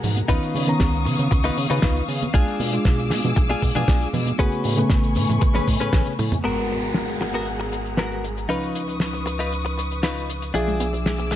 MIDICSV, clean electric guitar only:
0, 0, Header, 1, 3, 480
1, 0, Start_track
1, 0, Tempo, 512821
1, 272, Time_signature, 4, 2, 24, 8
1, 10631, End_track
2, 0, Start_track
2, 0, Title_t, "Clean electric guitar"
2, 0, Program_c, 0, 27
2, 265, Note_on_c, 0, 63, 108
2, 270, Note_on_c, 0, 65, 102
2, 276, Note_on_c, 0, 71, 122
2, 632, Note_off_c, 0, 63, 0
2, 634, Note_off_c, 0, 65, 0
2, 637, Note_off_c, 0, 71, 0
2, 1348, Note_on_c, 0, 63, 88
2, 1354, Note_on_c, 0, 65, 82
2, 1359, Note_on_c, 0, 71, 95
2, 1468, Note_off_c, 0, 63, 0
2, 1472, Note_off_c, 0, 65, 0
2, 1474, Note_off_c, 0, 71, 0
2, 1588, Note_on_c, 0, 63, 86
2, 1593, Note_on_c, 0, 65, 81
2, 1599, Note_on_c, 0, 71, 98
2, 1890, Note_off_c, 0, 63, 0
2, 1892, Note_off_c, 0, 65, 0
2, 1895, Note_off_c, 0, 71, 0
2, 2188, Note_on_c, 0, 62, 115
2, 2193, Note_on_c, 0, 65, 105
2, 2199, Note_on_c, 0, 68, 126
2, 2553, Note_off_c, 0, 62, 0
2, 2555, Note_off_c, 0, 65, 0
2, 2558, Note_off_c, 0, 68, 0
2, 3271, Note_on_c, 0, 62, 84
2, 3276, Note_on_c, 0, 65, 80
2, 3282, Note_on_c, 0, 68, 99
2, 3390, Note_off_c, 0, 62, 0
2, 3392, Note_off_c, 0, 65, 0
2, 3395, Note_off_c, 0, 68, 0
2, 3511, Note_on_c, 0, 62, 86
2, 3517, Note_on_c, 0, 65, 81
2, 3522, Note_on_c, 0, 68, 100
2, 3812, Note_off_c, 0, 62, 0
2, 3814, Note_off_c, 0, 65, 0
2, 3817, Note_off_c, 0, 68, 0
2, 4108, Note_on_c, 0, 61, 107
2, 4113, Note_on_c, 0, 68, 107
2, 4118, Note_on_c, 0, 71, 127
2, 4473, Note_off_c, 0, 61, 0
2, 4476, Note_off_c, 0, 68, 0
2, 4478, Note_off_c, 0, 71, 0
2, 5191, Note_on_c, 0, 61, 89
2, 5197, Note_on_c, 0, 68, 79
2, 5201, Note_on_c, 0, 71, 93
2, 5310, Note_off_c, 0, 61, 0
2, 5313, Note_off_c, 0, 68, 0
2, 5315, Note_off_c, 0, 71, 0
2, 5431, Note_on_c, 0, 61, 85
2, 5436, Note_on_c, 0, 68, 79
2, 5441, Note_on_c, 0, 71, 95
2, 5731, Note_off_c, 0, 61, 0
2, 5734, Note_off_c, 0, 68, 0
2, 5737, Note_off_c, 0, 71, 0
2, 6026, Note_on_c, 0, 59, 96
2, 6033, Note_on_c, 0, 66, 86
2, 6037, Note_on_c, 0, 70, 101
2, 6330, Note_off_c, 0, 59, 0
2, 6334, Note_off_c, 0, 66, 0
2, 6336, Note_off_c, 0, 70, 0
2, 6870, Note_on_c, 0, 59, 73
2, 6875, Note_on_c, 0, 66, 68
2, 6881, Note_on_c, 0, 70, 84
2, 6989, Note_off_c, 0, 59, 0
2, 6992, Note_off_c, 0, 66, 0
2, 6995, Note_off_c, 0, 70, 0
2, 7468, Note_on_c, 0, 59, 75
2, 7475, Note_on_c, 0, 66, 68
2, 7479, Note_on_c, 0, 70, 79
2, 7710, Note_off_c, 0, 59, 0
2, 7713, Note_off_c, 0, 66, 0
2, 7716, Note_off_c, 0, 70, 0
2, 7945, Note_on_c, 0, 63, 96
2, 7951, Note_on_c, 0, 65, 88
2, 7956, Note_on_c, 0, 71, 105
2, 8250, Note_off_c, 0, 63, 0
2, 8253, Note_off_c, 0, 65, 0
2, 8256, Note_off_c, 0, 71, 0
2, 8790, Note_on_c, 0, 63, 75
2, 8796, Note_on_c, 0, 65, 72
2, 8801, Note_on_c, 0, 71, 82
2, 8909, Note_off_c, 0, 63, 0
2, 8913, Note_off_c, 0, 65, 0
2, 8915, Note_off_c, 0, 71, 0
2, 9388, Note_on_c, 0, 63, 76
2, 9394, Note_on_c, 0, 65, 70
2, 9398, Note_on_c, 0, 71, 81
2, 9630, Note_off_c, 0, 63, 0
2, 9633, Note_off_c, 0, 65, 0
2, 9635, Note_off_c, 0, 71, 0
2, 9865, Note_on_c, 0, 62, 102
2, 9869, Note_on_c, 0, 65, 90
2, 9875, Note_on_c, 0, 68, 107
2, 10170, Note_off_c, 0, 62, 0
2, 10172, Note_off_c, 0, 65, 0
2, 10175, Note_off_c, 0, 68, 0
2, 10631, End_track
3, 0, Start_track
3, 0, Title_t, "Muted clean electric guitar strokes"
3, 987, Note_on_c, 9, 29, 33
3, 1080, Note_off_c, 9, 29, 0
3, 1227, Note_on_c, 9, 29, 82
3, 1321, Note_off_c, 9, 29, 0
3, 2908, Note_on_c, 9, 29, 33
3, 3001, Note_off_c, 9, 29, 0
3, 3148, Note_on_c, 9, 29, 88
3, 3241, Note_off_c, 9, 29, 0
3, 4830, Note_on_c, 9, 29, 32
3, 4924, Note_off_c, 9, 29, 0
3, 5067, Note_on_c, 9, 29, 85
3, 5161, Note_off_c, 9, 29, 0
3, 6629, Note_on_c, 9, 29, 29
3, 6723, Note_off_c, 9, 29, 0
3, 6747, Note_on_c, 9, 29, 74
3, 6841, Note_off_c, 9, 29, 0
3, 7110, Note_on_c, 9, 29, 96
3, 7204, Note_off_c, 9, 29, 0
3, 7229, Note_on_c, 9, 29, 29
3, 7322, Note_off_c, 9, 29, 0
3, 8548, Note_on_c, 9, 29, 29
3, 8642, Note_off_c, 9, 29, 0
3, 8666, Note_on_c, 9, 29, 76
3, 8760, Note_off_c, 9, 29, 0
3, 9030, Note_on_c, 9, 29, 97
3, 9123, Note_off_c, 9, 29, 0
3, 9150, Note_on_c, 9, 29, 29
3, 9243, Note_off_c, 9, 29, 0
3, 10470, Note_on_c, 9, 29, 29
3, 10564, Note_off_c, 9, 29, 0
3, 10587, Note_on_c, 9, 29, 81
3, 10631, Note_off_c, 9, 29, 0
3, 10631, End_track
0, 0, End_of_file